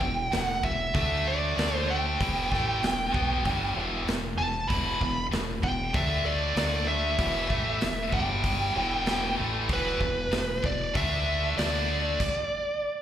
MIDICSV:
0, 0, Header, 1, 5, 480
1, 0, Start_track
1, 0, Key_signature, 1, "minor"
1, 0, Tempo, 625000
1, 1685, Time_signature, 4, 2, 24, 8
1, 9999, End_track
2, 0, Start_track
2, 0, Title_t, "Lead electric guitar"
2, 0, Program_c, 0, 29
2, 0, Note_on_c, 0, 79, 100
2, 264, Note_off_c, 0, 79, 0
2, 264, Note_on_c, 0, 78, 100
2, 494, Note_off_c, 0, 78, 0
2, 497, Note_on_c, 0, 76, 90
2, 714, Note_off_c, 0, 76, 0
2, 733, Note_on_c, 0, 76, 94
2, 976, Note_off_c, 0, 76, 0
2, 979, Note_on_c, 0, 74, 99
2, 1348, Note_off_c, 0, 74, 0
2, 1348, Note_on_c, 0, 72, 99
2, 1462, Note_on_c, 0, 79, 83
2, 1466, Note_off_c, 0, 72, 0
2, 2863, Note_off_c, 0, 79, 0
2, 3364, Note_on_c, 0, 81, 84
2, 3592, Note_on_c, 0, 83, 95
2, 3611, Note_off_c, 0, 81, 0
2, 4047, Note_off_c, 0, 83, 0
2, 4331, Note_on_c, 0, 79, 97
2, 4572, Note_on_c, 0, 76, 84
2, 4575, Note_off_c, 0, 79, 0
2, 4803, Note_off_c, 0, 76, 0
2, 4806, Note_on_c, 0, 74, 86
2, 5028, Note_off_c, 0, 74, 0
2, 5052, Note_on_c, 0, 74, 80
2, 5281, Note_off_c, 0, 74, 0
2, 5284, Note_on_c, 0, 76, 86
2, 6249, Note_on_c, 0, 79, 94
2, 6273, Note_off_c, 0, 76, 0
2, 7176, Note_off_c, 0, 79, 0
2, 7475, Note_on_c, 0, 71, 89
2, 8185, Note_on_c, 0, 74, 102
2, 8201, Note_off_c, 0, 71, 0
2, 8420, Note_off_c, 0, 74, 0
2, 8423, Note_on_c, 0, 76, 102
2, 8863, Note_off_c, 0, 76, 0
2, 8890, Note_on_c, 0, 74, 77
2, 9999, Note_off_c, 0, 74, 0
2, 9999, End_track
3, 0, Start_track
3, 0, Title_t, "Distorted electric guitar"
3, 0, Program_c, 1, 30
3, 4, Note_on_c, 1, 40, 65
3, 12, Note_on_c, 1, 47, 62
3, 196, Note_off_c, 1, 40, 0
3, 200, Note_off_c, 1, 47, 0
3, 247, Note_on_c, 1, 40, 62
3, 251, Note_on_c, 1, 47, 72
3, 438, Note_off_c, 1, 40, 0
3, 439, Note_off_c, 1, 47, 0
3, 489, Note_on_c, 1, 40, 54
3, 492, Note_on_c, 1, 47, 56
3, 679, Note_off_c, 1, 40, 0
3, 680, Note_off_c, 1, 47, 0
3, 724, Note_on_c, 1, 50, 95
3, 731, Note_on_c, 1, 57, 99
3, 735, Note_on_c, 1, 62, 107
3, 1197, Note_off_c, 1, 50, 0
3, 1201, Note_off_c, 1, 57, 0
3, 1203, Note_off_c, 1, 62, 0
3, 1206, Note_on_c, 1, 50, 80
3, 1213, Note_on_c, 1, 57, 88
3, 1217, Note_on_c, 1, 62, 93
3, 1678, Note_off_c, 1, 50, 0
3, 1682, Note_off_c, 1, 57, 0
3, 1684, Note_off_c, 1, 62, 0
3, 1687, Note_on_c, 1, 40, 89
3, 1696, Note_on_c, 1, 47, 92
3, 1699, Note_on_c, 1, 52, 102
3, 1919, Note_off_c, 1, 40, 0
3, 1923, Note_off_c, 1, 47, 0
3, 1925, Note_off_c, 1, 52, 0
3, 1927, Note_on_c, 1, 45, 84
3, 1935, Note_on_c, 1, 52, 86
3, 1937, Note_on_c, 1, 57, 86
3, 2159, Note_off_c, 1, 45, 0
3, 2163, Note_off_c, 1, 52, 0
3, 2164, Note_off_c, 1, 57, 0
3, 2179, Note_on_c, 1, 40, 65
3, 2183, Note_on_c, 1, 47, 66
3, 2364, Note_off_c, 1, 40, 0
3, 2366, Note_off_c, 1, 47, 0
3, 2412, Note_on_c, 1, 47, 73
3, 2421, Note_on_c, 1, 54, 77
3, 2425, Note_on_c, 1, 59, 86
3, 2641, Note_off_c, 1, 47, 0
3, 2646, Note_off_c, 1, 54, 0
3, 2648, Note_off_c, 1, 59, 0
3, 2653, Note_on_c, 1, 43, 87
3, 2658, Note_on_c, 1, 50, 92
3, 2666, Note_on_c, 1, 55, 101
3, 2882, Note_off_c, 1, 43, 0
3, 2884, Note_off_c, 1, 50, 0
3, 2888, Note_off_c, 1, 55, 0
3, 2889, Note_on_c, 1, 40, 76
3, 2894, Note_on_c, 1, 47, 81
3, 2901, Note_on_c, 1, 52, 87
3, 3120, Note_off_c, 1, 40, 0
3, 3120, Note_off_c, 1, 47, 0
3, 3126, Note_off_c, 1, 52, 0
3, 3128, Note_on_c, 1, 40, 61
3, 3129, Note_on_c, 1, 47, 70
3, 3318, Note_off_c, 1, 40, 0
3, 3319, Note_off_c, 1, 47, 0
3, 3365, Note_on_c, 1, 40, 63
3, 3367, Note_on_c, 1, 47, 64
3, 3557, Note_off_c, 1, 40, 0
3, 3558, Note_off_c, 1, 47, 0
3, 3598, Note_on_c, 1, 40, 92
3, 3606, Note_on_c, 1, 47, 96
3, 3609, Note_on_c, 1, 52, 107
3, 3834, Note_off_c, 1, 40, 0
3, 3835, Note_off_c, 1, 47, 0
3, 3840, Note_off_c, 1, 52, 0
3, 3844, Note_on_c, 1, 40, 57
3, 3845, Note_on_c, 1, 47, 66
3, 4036, Note_off_c, 1, 40, 0
3, 4037, Note_off_c, 1, 47, 0
3, 4083, Note_on_c, 1, 40, 62
3, 4090, Note_on_c, 1, 47, 73
3, 4276, Note_off_c, 1, 40, 0
3, 4279, Note_off_c, 1, 47, 0
3, 4326, Note_on_c, 1, 40, 48
3, 4332, Note_on_c, 1, 47, 58
3, 4517, Note_off_c, 1, 40, 0
3, 4520, Note_off_c, 1, 47, 0
3, 4565, Note_on_c, 1, 50, 97
3, 4572, Note_on_c, 1, 57, 105
3, 4572, Note_on_c, 1, 62, 91
3, 5029, Note_off_c, 1, 50, 0
3, 5034, Note_off_c, 1, 57, 0
3, 5039, Note_on_c, 1, 50, 89
3, 5041, Note_off_c, 1, 62, 0
3, 5043, Note_on_c, 1, 57, 95
3, 5049, Note_on_c, 1, 62, 103
3, 5514, Note_off_c, 1, 50, 0
3, 5514, Note_on_c, 1, 40, 91
3, 5516, Note_off_c, 1, 57, 0
3, 5519, Note_off_c, 1, 62, 0
3, 5520, Note_on_c, 1, 47, 93
3, 5526, Note_on_c, 1, 52, 100
3, 5748, Note_off_c, 1, 47, 0
3, 5750, Note_off_c, 1, 52, 0
3, 5751, Note_on_c, 1, 45, 81
3, 5752, Note_off_c, 1, 40, 0
3, 5759, Note_on_c, 1, 52, 81
3, 5766, Note_on_c, 1, 57, 86
3, 5990, Note_off_c, 1, 45, 0
3, 5994, Note_off_c, 1, 52, 0
3, 5998, Note_off_c, 1, 57, 0
3, 6006, Note_on_c, 1, 40, 65
3, 6006, Note_on_c, 1, 47, 70
3, 6197, Note_off_c, 1, 40, 0
3, 6197, Note_off_c, 1, 47, 0
3, 6238, Note_on_c, 1, 43, 77
3, 6247, Note_on_c, 1, 50, 81
3, 6249, Note_on_c, 1, 55, 90
3, 6712, Note_off_c, 1, 43, 0
3, 6715, Note_on_c, 1, 40, 79
3, 6718, Note_off_c, 1, 50, 0
3, 6720, Note_off_c, 1, 55, 0
3, 6724, Note_on_c, 1, 47, 86
3, 6726, Note_on_c, 1, 52, 97
3, 7187, Note_off_c, 1, 52, 0
3, 7188, Note_off_c, 1, 47, 0
3, 7191, Note_on_c, 1, 45, 85
3, 7193, Note_off_c, 1, 40, 0
3, 7196, Note_on_c, 1, 52, 92
3, 7203, Note_on_c, 1, 57, 108
3, 7431, Note_off_c, 1, 45, 0
3, 7433, Note_off_c, 1, 52, 0
3, 7437, Note_off_c, 1, 57, 0
3, 7437, Note_on_c, 1, 40, 89
3, 7442, Note_on_c, 1, 47, 93
3, 7447, Note_on_c, 1, 52, 98
3, 7668, Note_off_c, 1, 40, 0
3, 7676, Note_off_c, 1, 47, 0
3, 7677, Note_on_c, 1, 40, 63
3, 7678, Note_off_c, 1, 52, 0
3, 7684, Note_on_c, 1, 47, 60
3, 7873, Note_off_c, 1, 40, 0
3, 7876, Note_off_c, 1, 47, 0
3, 7921, Note_on_c, 1, 40, 66
3, 7924, Note_on_c, 1, 47, 72
3, 8115, Note_off_c, 1, 40, 0
3, 8116, Note_off_c, 1, 47, 0
3, 8162, Note_on_c, 1, 40, 58
3, 8165, Note_on_c, 1, 47, 72
3, 8355, Note_off_c, 1, 40, 0
3, 8357, Note_off_c, 1, 47, 0
3, 8404, Note_on_c, 1, 50, 98
3, 8408, Note_on_c, 1, 57, 105
3, 8417, Note_on_c, 1, 62, 110
3, 8871, Note_off_c, 1, 50, 0
3, 8879, Note_off_c, 1, 57, 0
3, 8880, Note_on_c, 1, 50, 101
3, 8884, Note_off_c, 1, 62, 0
3, 8889, Note_on_c, 1, 57, 111
3, 8893, Note_on_c, 1, 62, 103
3, 9355, Note_off_c, 1, 50, 0
3, 9360, Note_off_c, 1, 57, 0
3, 9362, Note_off_c, 1, 62, 0
3, 9999, End_track
4, 0, Start_track
4, 0, Title_t, "Fingered electric bass"
4, 0, Program_c, 2, 33
4, 7, Note_on_c, 2, 28, 83
4, 229, Note_off_c, 2, 28, 0
4, 255, Note_on_c, 2, 28, 82
4, 473, Note_off_c, 2, 28, 0
4, 489, Note_on_c, 2, 28, 74
4, 710, Note_off_c, 2, 28, 0
4, 726, Note_on_c, 2, 38, 91
4, 1175, Note_off_c, 2, 38, 0
4, 1209, Note_on_c, 2, 38, 85
4, 1656, Note_off_c, 2, 38, 0
4, 1691, Note_on_c, 2, 28, 86
4, 1912, Note_off_c, 2, 28, 0
4, 1932, Note_on_c, 2, 33, 90
4, 2152, Note_off_c, 2, 33, 0
4, 2172, Note_on_c, 2, 28, 76
4, 2392, Note_off_c, 2, 28, 0
4, 2413, Note_on_c, 2, 35, 89
4, 2632, Note_off_c, 2, 35, 0
4, 2654, Note_on_c, 2, 31, 82
4, 2873, Note_off_c, 2, 31, 0
4, 2893, Note_on_c, 2, 28, 92
4, 3112, Note_off_c, 2, 28, 0
4, 3133, Note_on_c, 2, 28, 69
4, 3352, Note_off_c, 2, 28, 0
4, 3369, Note_on_c, 2, 28, 69
4, 3590, Note_off_c, 2, 28, 0
4, 3613, Note_on_c, 2, 28, 78
4, 3832, Note_off_c, 2, 28, 0
4, 3849, Note_on_c, 2, 28, 83
4, 4070, Note_off_c, 2, 28, 0
4, 4088, Note_on_c, 2, 28, 71
4, 4310, Note_off_c, 2, 28, 0
4, 4324, Note_on_c, 2, 28, 80
4, 4547, Note_off_c, 2, 28, 0
4, 4566, Note_on_c, 2, 38, 85
4, 5014, Note_off_c, 2, 38, 0
4, 5040, Note_on_c, 2, 38, 86
4, 5491, Note_off_c, 2, 38, 0
4, 5520, Note_on_c, 2, 28, 83
4, 5745, Note_off_c, 2, 28, 0
4, 5760, Note_on_c, 2, 33, 102
4, 5985, Note_off_c, 2, 33, 0
4, 6008, Note_on_c, 2, 28, 78
4, 6230, Note_off_c, 2, 28, 0
4, 6239, Note_on_c, 2, 31, 85
4, 6691, Note_off_c, 2, 31, 0
4, 6725, Note_on_c, 2, 28, 94
4, 7174, Note_off_c, 2, 28, 0
4, 7217, Note_on_c, 2, 33, 94
4, 7435, Note_off_c, 2, 33, 0
4, 7445, Note_on_c, 2, 28, 85
4, 7668, Note_off_c, 2, 28, 0
4, 7681, Note_on_c, 2, 28, 81
4, 7906, Note_off_c, 2, 28, 0
4, 7925, Note_on_c, 2, 28, 77
4, 8148, Note_off_c, 2, 28, 0
4, 8170, Note_on_c, 2, 28, 77
4, 8391, Note_off_c, 2, 28, 0
4, 8407, Note_on_c, 2, 38, 94
4, 8855, Note_off_c, 2, 38, 0
4, 8893, Note_on_c, 2, 38, 88
4, 9338, Note_off_c, 2, 38, 0
4, 9999, End_track
5, 0, Start_track
5, 0, Title_t, "Drums"
5, 6, Note_on_c, 9, 36, 67
5, 83, Note_off_c, 9, 36, 0
5, 247, Note_on_c, 9, 46, 58
5, 256, Note_on_c, 9, 38, 102
5, 324, Note_off_c, 9, 46, 0
5, 333, Note_off_c, 9, 38, 0
5, 487, Note_on_c, 9, 36, 86
5, 564, Note_off_c, 9, 36, 0
5, 726, Note_on_c, 9, 46, 55
5, 727, Note_on_c, 9, 36, 114
5, 802, Note_off_c, 9, 46, 0
5, 804, Note_off_c, 9, 36, 0
5, 1214, Note_on_c, 9, 46, 57
5, 1222, Note_on_c, 9, 38, 108
5, 1290, Note_off_c, 9, 46, 0
5, 1299, Note_off_c, 9, 38, 0
5, 1694, Note_on_c, 9, 36, 98
5, 1697, Note_on_c, 9, 46, 56
5, 1771, Note_off_c, 9, 36, 0
5, 1773, Note_off_c, 9, 46, 0
5, 1933, Note_on_c, 9, 36, 68
5, 1946, Note_on_c, 9, 38, 28
5, 2010, Note_off_c, 9, 36, 0
5, 2023, Note_off_c, 9, 38, 0
5, 2174, Note_on_c, 9, 46, 50
5, 2183, Note_on_c, 9, 38, 101
5, 2251, Note_off_c, 9, 46, 0
5, 2260, Note_off_c, 9, 38, 0
5, 2414, Note_on_c, 9, 36, 92
5, 2491, Note_off_c, 9, 36, 0
5, 2650, Note_on_c, 9, 46, 53
5, 2653, Note_on_c, 9, 36, 103
5, 2727, Note_off_c, 9, 46, 0
5, 2730, Note_off_c, 9, 36, 0
5, 3131, Note_on_c, 9, 46, 46
5, 3139, Note_on_c, 9, 38, 103
5, 3207, Note_off_c, 9, 46, 0
5, 3216, Note_off_c, 9, 38, 0
5, 3609, Note_on_c, 9, 46, 54
5, 3611, Note_on_c, 9, 36, 103
5, 3686, Note_off_c, 9, 46, 0
5, 3688, Note_off_c, 9, 36, 0
5, 3850, Note_on_c, 9, 36, 72
5, 3927, Note_off_c, 9, 36, 0
5, 4089, Note_on_c, 9, 46, 54
5, 4097, Note_on_c, 9, 38, 105
5, 4166, Note_off_c, 9, 46, 0
5, 4174, Note_off_c, 9, 38, 0
5, 4326, Note_on_c, 9, 36, 85
5, 4403, Note_off_c, 9, 36, 0
5, 4562, Note_on_c, 9, 46, 54
5, 4565, Note_on_c, 9, 36, 111
5, 4639, Note_off_c, 9, 46, 0
5, 4641, Note_off_c, 9, 36, 0
5, 5040, Note_on_c, 9, 46, 56
5, 5048, Note_on_c, 9, 38, 105
5, 5117, Note_off_c, 9, 46, 0
5, 5125, Note_off_c, 9, 38, 0
5, 5519, Note_on_c, 9, 46, 57
5, 5520, Note_on_c, 9, 36, 104
5, 5596, Note_off_c, 9, 46, 0
5, 5597, Note_off_c, 9, 36, 0
5, 5761, Note_on_c, 9, 36, 74
5, 5838, Note_off_c, 9, 36, 0
5, 5999, Note_on_c, 9, 46, 60
5, 6007, Note_on_c, 9, 38, 104
5, 6075, Note_off_c, 9, 46, 0
5, 6084, Note_off_c, 9, 38, 0
5, 6240, Note_on_c, 9, 36, 86
5, 6317, Note_off_c, 9, 36, 0
5, 6480, Note_on_c, 9, 46, 58
5, 6481, Note_on_c, 9, 36, 97
5, 6557, Note_off_c, 9, 36, 0
5, 6557, Note_off_c, 9, 46, 0
5, 6959, Note_on_c, 9, 46, 50
5, 6968, Note_on_c, 9, 38, 105
5, 7036, Note_off_c, 9, 46, 0
5, 7044, Note_off_c, 9, 38, 0
5, 7440, Note_on_c, 9, 46, 45
5, 7445, Note_on_c, 9, 36, 106
5, 7517, Note_off_c, 9, 46, 0
5, 7522, Note_off_c, 9, 36, 0
5, 7685, Note_on_c, 9, 36, 73
5, 7762, Note_off_c, 9, 36, 0
5, 7924, Note_on_c, 9, 46, 52
5, 7932, Note_on_c, 9, 38, 109
5, 8000, Note_off_c, 9, 46, 0
5, 8009, Note_off_c, 9, 38, 0
5, 8170, Note_on_c, 9, 36, 88
5, 8247, Note_off_c, 9, 36, 0
5, 8410, Note_on_c, 9, 46, 53
5, 8412, Note_on_c, 9, 36, 109
5, 8487, Note_off_c, 9, 46, 0
5, 8488, Note_off_c, 9, 36, 0
5, 8894, Note_on_c, 9, 46, 55
5, 8902, Note_on_c, 9, 38, 98
5, 8970, Note_off_c, 9, 46, 0
5, 8979, Note_off_c, 9, 38, 0
5, 9370, Note_on_c, 9, 36, 103
5, 9371, Note_on_c, 9, 49, 94
5, 9447, Note_off_c, 9, 36, 0
5, 9447, Note_off_c, 9, 49, 0
5, 9999, End_track
0, 0, End_of_file